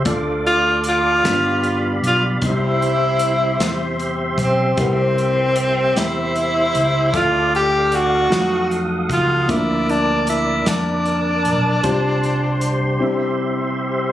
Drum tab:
HH |xxxxxx|xxxxxx|xxxxxx|xxxxxx|
SD |---o--|---o--|---o--|---o--|
BD |o-----|o----o|o-----|o----o|

HH |xxxxxx|xxx---|
SD |---o--|------|
BD |o-----|o-----|